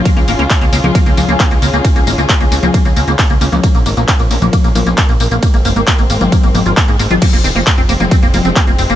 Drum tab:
CC |----------------|----------------|----------------|----------------|
RD |x---x---x---x---|x---x---x---x---|x---x---x---x---|x---x---x---x---|
HH |xxoxxxo-xxoxxxox|xxoxxxoxxxoxoxox|xxoxxxoxxxoxxxox|xxoxxxoxxxoxoxox|
TB |xxxxxxxxxxxxxxxx|xxxxxxxxxxxxxxxx|xxxxxxxxxxxxxxxx|xxxxxxxxxxxxxxxx|
CP |----x-------x---|----x-------x---|----x-------x---|----x-------x---|
CG |-------o--o-----|-------o-------o|-------o--o-----|-------o--o----o|
BD |o---o---o---o---|o---o---o---o---|o---o---o---o---|o---o---o---o---|

CC |x---------------|
RD |x---x---x---x---|
HH |xxoxxxoxxxoxxxox|
TB |xxxxxxxxxxxxxxxx|
CP |----x-------x---|
CG |-------o--o-----|
BD |o---o---o---o---|